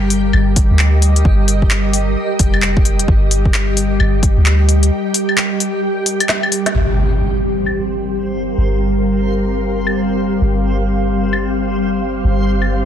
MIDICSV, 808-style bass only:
0, 0, Header, 1, 2, 480
1, 0, Start_track
1, 0, Key_signature, -2, "minor"
1, 0, Tempo, 458015
1, 1310, Time_signature, 4, 2, 24, 8
1, 13467, End_track
2, 0, Start_track
2, 0, Title_t, "808-style bass"
2, 0, Program_c, 0, 38
2, 0, Note_on_c, 0, 31, 102
2, 339, Note_off_c, 0, 31, 0
2, 351, Note_on_c, 0, 31, 90
2, 721, Note_off_c, 0, 31, 0
2, 740, Note_on_c, 0, 38, 85
2, 1299, Note_off_c, 0, 38, 0
2, 1311, Note_on_c, 0, 31, 102
2, 2259, Note_off_c, 0, 31, 0
2, 2511, Note_on_c, 0, 29, 103
2, 3219, Note_off_c, 0, 29, 0
2, 3231, Note_on_c, 0, 31, 105
2, 4179, Note_off_c, 0, 31, 0
2, 4191, Note_on_c, 0, 31, 91
2, 4561, Note_off_c, 0, 31, 0
2, 4581, Note_on_c, 0, 38, 83
2, 5140, Note_off_c, 0, 38, 0
2, 7071, Note_on_c, 0, 31, 85
2, 8973, Note_off_c, 0, 31, 0
2, 8989, Note_on_c, 0, 31, 86
2, 10892, Note_off_c, 0, 31, 0
2, 10913, Note_on_c, 0, 31, 85
2, 12814, Note_off_c, 0, 31, 0
2, 12830, Note_on_c, 0, 31, 85
2, 13467, Note_off_c, 0, 31, 0
2, 13467, End_track
0, 0, End_of_file